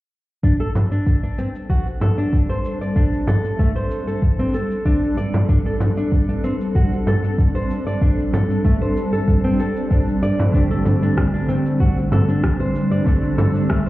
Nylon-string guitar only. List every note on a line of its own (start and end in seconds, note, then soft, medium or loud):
0.44 0.53 D4 medium
0.60 0.69 A4 medium
0.92 1.22 D4 medium
1.23 1.38 D4 medium
1.38 1.48 C4 medium
1.70 1.86 F#4 medium
2.01 2.16 A4 medium
2.18 2.48 D4 medium
2.49 2.79 C5 medium
2.81 2.96 D5 medium
2.96 3.26 D4 medium
3.28 3.58 A4 medium
3.59 3.69 A3 medium
3.76 4.06 C5 medium
4.07 4.22 A4 medium
4.39 4.53 C4 medium
4.54 4.84 A4 medium
4.85 5.16 D4 medium
5.17 5.47 D5 medium
5.49 5.58 D4 medium
5.66 5.74 A4 medium
5.97 6.27 D4 medium
6.29 6.43 D4 medium
6.44 6.53 C4 medium
6.76 6.91 F#4 medium
7.07 7.22 A4 medium
7.24 7.53 D4 medium
7.55 7.85 C5 medium
7.87 8.01 D5 medium
8.02 8.32 D4 medium
8.33 8.63 A4 medium
8.65 8.74 A3 medium
8.81 9.11 C5 medium
9.13 9.27 A4 medium
9.44 9.59 C4 medium
9.59 9.89 A4 medium
9.91 10.21 D4 medium
10.23 10.53 D5 medium
10.54 10.64 D4 medium
10.71 10.79 A4 medium
11.02 11.32 D4 medium
11.34 11.48 D4 medium
11.48 11.58 C4 medium
11.80 11.96 F#4 medium
12.12 12.27 A4 medium
12.28 12.59 D4 medium
12.60 12.90 C5 medium
12.91 13.06 D5 medium
13.07 13.37 D4 medium
13.38 13.68 A4 medium
13.70 13.79 A3 medium
13.86 13.89 C5 medium